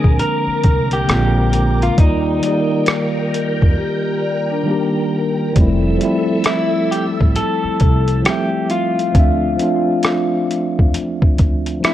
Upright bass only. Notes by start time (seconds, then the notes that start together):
0.04 A#1
0.47 muted upright bass stroke
0.64 C2
1.08 A#1
1.98 D#2
3.62 F2
5.56 F1
7.21 A1
7.64 muted upright bass stroke
7.81 C2
9.15 D2
10.79 E2
11.22 muted upright bass stroke
11.39 D2